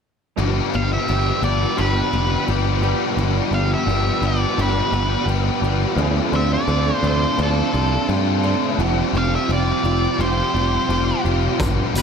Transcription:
0.37 picked electric bass G1, overdriven electric guitar G2 D3 F3 G3 B3 G4
0.72 picked electric bass G1, overdriven electric guitar F3 G3 B3 G4, lead electric guitar F5
0.93 lead electric guitar E5
1.07 picked electric bass G1, overdriven electric guitar F3 G3 B3 G4
1.41 picked electric bass G1, overdriven electric guitar F3 G3 B3 G4, twelve-string acoustic guitar D4, lead electric guitar D5
1.77 picked electric bass G1, overdriven electric guitar G2 D3 F3 G3 B3 G4, lead electric guitar B4
2.12 picked electric bass F1, overdriven electric guitar F3 G3 B3 G4
2.48 picked electric bass G1, overdriven electric guitar F3 G3 B3 G4
2.82 overdriven electric guitar F3 G3 B3 G4, twelve-string acoustic guitar D4
3.17 picked electric bass G1, overdriven electric guitar G2 D3 F3 G3 B3 G4
3.51 picked electric bass G1, overdriven electric guitar F3 G3 B3 G4, lead electric guitar F5
3.74 lead electric guitar E5
3.87 picked electric bass G1, overdriven electric guitar F3 G3 B3 G4
4.22 picked electric bass G1, overdriven electric guitar F3 G3 B3 G4, twelve-string acoustic guitar D4
4.27 lead electric guitar D5
4.57 picked electric bass G1, overdriven electric guitar G2 D3 F3 G3 B3 G4, lead electric guitar B4
4.92 picked electric bass G1, overdriven electric guitar F3 G3 B3 G4
5.26 picked electric bass G1, overdriven electric guitar F3 G3 B3 G4
5.62 picked electric bass G1, overdriven electric guitar F3 G3 B3 G4, twelve-string acoustic guitar D4
5.96 picked electric bass D2, overdriven electric guitar D3 A3 D4 F4, twelve-string acoustic guitar F3, clean electric guitar F3 C4
6.01 clean electric guitar A4
6.32 picked electric bass D2, overdriven electric guitar A3 D4 F4, twelve-string acoustic guitar C4, lead electric guitar E5
6.53 lead electric guitar D5
6.67 picked electric bass D2, overdriven electric guitar D3 A3 D4 F4, clean electric guitar F3 C4 A4, twelve-string acoustic guitar A4
6.96 lead electric guitar C5
7.03 picked electric bass D2, overdriven electric guitar A3 D4 F4
7.07 lead electric guitar C5
7.38 picked electric bass D2, overdriven electric guitar D3 A3 D4 F4, clean electric guitar F3 C4 A4, twelve-string acoustic guitar A4
7.42 lead electric guitar A4
7.72 picked electric bass C2, twelve-string acoustic guitar C4, clean electric guitar C4 A4, overdriven electric guitar D4 F4
7.76 overdriven electric guitar A3
8.07 picked electric bass G2, overdriven electric guitar D3 A3 D4 F4, twelve-string acoustic guitar A4
8.43 overdriven electric guitar A3 D4 F4, clean electric guitar C4 A4
8.78 picked electric bass F1, overdriven electric guitar F3 G3 C4 G4, clean electric guitar F4
9.13 picked electric bass F1, overdriven electric guitar G3 C4 G4
9.18 lead electric guitar F5
9.35 lead electric guitar E5
9.48 picked electric bass F1, overdriven electric guitar F3 G3 C4 G4, clean electric guitar F4
9.52 lead electric guitar D5
9.83 picked electric bass F1, overdriven electric guitar G3 C4 G4, twelve-string acoustic guitar F4
10.17 picked electric bass F1, overdriven electric guitar F3 G3 C4 G4, clean electric guitar F4, lead electric guitar C5
10.54 picked electric bass F1, overdriven electric guitar G3 C4 G4, clean electric guitar F4
10.88 picked electric bass F1, overdriven electric guitar F3 G3 C4 G4
11.23 picked electric bass F1, overdriven electric guitar G3 C4 G4, clean electric guitar F4, twelve-string acoustic guitar F4
11.58 picked electric bass G1, overdriven electric guitar G2 D3 F3 G3 B3 G4, kick, closed hi-hat
11.94 picked electric bass G1, overdriven electric guitar F3 G3 B3 G4, closed hi-hat
11.98 lead electric guitar B4

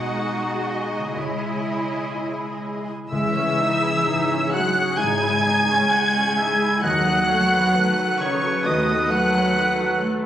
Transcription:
Already playing: grand piano B1, harp B2 G#3 F#4 F#5, viola section G#3 D#4, cello section F#4, violin section G#4 D#5 F#5
0.19 grand piano D#4 D#5
0.66 violin section D#5
0.98 harp C#3
1.03 harp G#3
1.07 harp E4
1.14 grand piano C#2, viola section G#3 E4, cello section E4, violin section G#4 C#5 D#5
2.14 grand piano E4 D#5
3.11 double bass section C#2, grand piano C#2, harp C#3, cello section E3, viola section G#3 G#4, french horn section E4, violin section E5 E6, oboe E5, flute E5
3.35 viola section C#4
3.43 harp C#4
3.59 viola section D#4
3.73 harp E4
3.82 viola section E4
4.05 grand piano G#2, viola section D#4, harp C#5
4.29 viola section C#4
4.36 harp G#4
4.50 cello section F#3, french horn section F#4, violin section F#5 F#6, flute F#5, oboe F#5
4.54 viola section G#3
4.76 viola section C#4
4.94 double bass section G#1, grand piano G#3 E4 E5, cello section G#3, french horn section G#4, violin section G#5 G#6, flute G#5, oboe G#5, clarinet G#5
4.98 harp C#3, viola section D#4
5.22 viola section E4
5.29 harp C#4
5.45 viola section D#4
5.59 harp E4
5.69 viola section C#4
5.90 viola section G#3, clarinet F#5
6.17 viola section C#4
6.21 harp G#4
6.37 viola section D#4, clarinet E5
6.62 viola section E4
6.82 grand piano D#2, double bass section D#2, harp D#3, viola section D#3 A4, cello section F#3, french horn section F#4, clarinet D#5, violin section F#5 F#6, oboe F#5, flute F#5
7.07 viola section F#3
7.13 harp D#4
7.28 viola section A3, clarinet C#5
7.44 harp F#4
7.51 viola section B3
7.74 grand piano D#3, viola section A3, harp B4, clarinet B4
7.98 viola section F#3
8.04 harp A4
8.19 cello section C#3, viola section D#3, violin section C#5 C#6, flute C#5, oboe C#5
8.23 french horn section C#4
8.35 harp B4
8.43 viola section F#3
8.64 double bass section D#2, cello section D#3, harp D#3, grand piano A3 F#4 B4, viola section A3, french horn section D#4, violin section D#5 D#6, flute D#5, oboe D#5
8.87 viola section B3
8.95 harp D#4
9.09 cello section F#3, viola section A3, violin section F#5 F#6, flute F#5, oboe F#5
9.13 french horn section F#4
9.26 harp F#4
9.35 viola section F#3
9.57 viola section D#3, harp B4
9.79 viola section F#3
9.88 harp A4
10.02 viola section A3
10.18 harp B4

